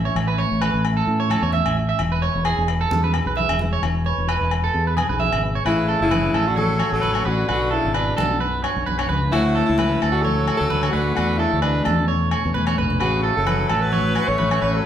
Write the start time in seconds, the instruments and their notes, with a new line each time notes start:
Already playing: clean electric guitar E3 C#4 E4 A4
0.05 clean electric guitar C#5
0.15 fingered electric bass A1, clean electric guitar A2, muted conga, low agogo
0.28 clean electric guitar B4
0.38 clean electric guitar C#5, muted conga
0.52 fingered electric bass A1
0.61 clean electric guitar E3 A4 B4, low agogo
0.74 fingered electric bass A1
0.84 clean electric guitar E4, muted conga, low agogo
0.97 clean electric guitar A4
1.07 fingered electric bass A2, clean electric guitar C#4, muted conga
1.20 clean electric guitar C#5
1.30 clean electric guitar A2 E4 A4, high conga, low agogo
1.42 fingered electric bass E2, clean electric guitar C#5
1.53 clean electric guitar C#4 E5, high conga
1.66 fingered electric bass A1, low agogo
1.77 clean electric guitar E4
1.89 clean electric guitar E5
1.98 fingered electric bass E1, clean electric guitar E3, muted conga, low agogo
2.12 clean electric guitar B4
2.22 clean electric guitar B4 C#5, muted conga
2.35 fingered electric bass E1
2.45 clean electric guitar E4 G#4 B4, low agogo
2.58 fingered electric bass E1
2.68 clean electric guitar B4, muted conga, low agogo
2.81 clean electric guitar A4
2.91 fingered electric bass E2, clean electric guitar G#4, muted conga, high conga
3.04 clean electric guitar B4
3.13 clean electric guitar B2 B4, muted clean electric guitar stroke, low agogo
3.26 fingered electric bass B1, clean electric guitar B4
3.36 clean electric guitar G#4 E5, high conga
3.49 fingered electric bass E1, low agogo
3.59 clean electric guitar B4, high conga
3.73 clean electric guitar C#5
3.82 fingered electric bass E1, clean electric guitar E3, muted conga, low agogo
4.05 clean electric guitar B4 C#5, muted conga
4.18 fingered electric bass E1
4.27 clean electric guitar E4 B4, low agogo
4.41 fingered electric bass E1
4.51 clean electric guitar B4, muted conga, low agogo
4.64 clean electric guitar A4
4.73 fingered electric bass E2, clean electric guitar G#4, muted conga
4.87 clean electric guitar B4
4.96 clean electric guitar B2 G#4 B4, high conga, low agogo
5.09 fingered electric bass B1, clean electric guitar B4
5.20 clean electric guitar G#4 E5, high conga
5.32 fingered electric bass G#1, low agogo
5.43 clean electric guitar B4
5.55 clean electric guitar C#5
5.65 fingered electric bass A1, clean electric guitar A2 C#4 B4, tenor saxophone C#3, alto saxophone E4, muted conga, low agogo
5.88 clean electric guitar C#4 A4
6.01 fingered electric bass F#1, tenor saxophone C#3, alto saxophone E4
6.11 clean electric guitar E3 B4, muted conga, high conga, low agogo
6.34 fingered electric bass A1, clean electric guitar C#4 A4, low agogo
6.47 tenor saxophone D3, alto saxophone F#4
6.56 clean electric guitar E3 C#5, tenor saxophone F#3, alto saxophone A4, muted conga, high conga
6.79 clean electric guitar F#4 C#5, muted conga, low agogo
6.92 fingered electric bass A1, tenor saxophone F#3, alto saxophone A4
7.02 fingered electric bass A1, clean electric guitar E3 B4, high conga
7.14 clean electric guitar C#5, low agogo
7.25 fingered electric bass A1, tenor saxophone D3, clean electric guitar C#4 B4, alto saxophone F#4
7.49 fingered electric bass B1, clean electric guitar B2 B3 D4 B4, tenor saxophone D3, alto saxophone F#4, muted clean electric guitar stroke, muted conga, low agogo
7.71 clean electric guitar D4 A4, alto saxophone E4
7.75 tenor saxophone C#3
7.85 fingered electric bass G#1
7.94 tenor saxophone B2, alto saxophone D4, clean electric guitar B4, muted conga, low agogo
8.17 fingered electric bass B1, clean electric guitar F#4 A4, high conga, low agogo
8.40 clean electric guitar F#2 B4, muted conga
8.64 clean electric guitar D4 C#5, muted conga, low agogo
8.76 fingered electric bass B1
8.86 fingered electric bass B1, clean electric guitar B4, high conga
8.99 clean electric guitar C#5, low agogo
9.09 fingered electric bass C#2, clean electric guitar C#3 B4, high conga
9.32 fingered electric bass D2, tenor saxophone A2, clean electric guitar A3 F#4, alto saxophone E4, low agogo
9.55 clean electric guitar A3 A4
9.66 fingered electric bass C#2, tenor saxophone A2, alto saxophone E4
9.78 clean electric guitar F#3 B4, muted conga, high conga, low agogo
10.02 fingered electric bass D2, clean electric guitar A4, low agogo
10.11 tenor saxophone D3, alto saxophone F#4
10.22 clean electric guitar A2 C#5, tenor saxophone F#3, alto saxophone A4, muted conga, high conga
10.47 clean electric guitar E4 C#5, muted conga, low agogo
10.57 fingered electric bass D2, tenor saxophone F#3, alto saxophone A4
10.70 fingered electric bass D2, clean electric guitar F#3 B4, high conga
10.83 clean electric guitar C#5, low agogo
10.90 fingered electric bass D2, tenor saxophone D3, alto saxophone F#4, clean electric guitar B4
10.95 clean electric guitar A3
11.14 fingered electric bass E2, tenor saxophone D3, clean electric guitar E3 D4 B4, alto saxophone F#4, muted conga, low agogo
11.37 tenor saxophone C#3, clean electric guitar D4 A4, alto saxophone E4
11.53 fingered electric bass D2
11.62 tenor saxophone B2, clean electric guitar A3 B4, alto saxophone D4, muted conga, low agogo
11.85 fingered electric bass E2, clean electric guitar A4, high conga, low agogo
12.08 clean electric guitar B2 C#5, muted conga
12.31 clean electric guitar A4 C#5, low agogo
12.46 fingered electric bass E2
12.54 fingered electric bass E2, clean electric guitar A3 B4, high conga
12.67 clean electric guitar C#5, high conga, low agogo
12.78 fingered electric bass A#1, clean electric guitar D4 B4, low conga
12.90 low conga
13.00 fingered electric bass A1, tenor saxophone C#3, clean electric guitar C#4 B4, alto saxophone F#4, muted clean electric guitar stroke, muted conga, low agogo
13.23 clean electric guitar E4 A4
13.37 fingered electric bass F#1, tenor saxophone F#3, alto saxophone A4
13.47 clean electric guitar E3 B4, muted conga, high conga, low agogo
13.69 fingered electric bass A1, clean electric guitar F#4 A4, low agogo
13.81 tenor saxophone F#3, alto saxophone B4
13.92 clean electric guitar A2 C#5, muted conga, high conga
14.15 clean electric guitar E4 C#5, muted conga, low agogo
14.28 fingered electric bass A1, tenor saxophone A3, alto saxophone C#5
14.38 fingered electric bass A1, clean electric guitar E3 B4, high conga
14.51 clean electric guitar C#5, low agogo
14.62 fingered electric bass A1, clean electric guitar C#4 B4
14.74 tenor saxophone F#3, alto saxophone A4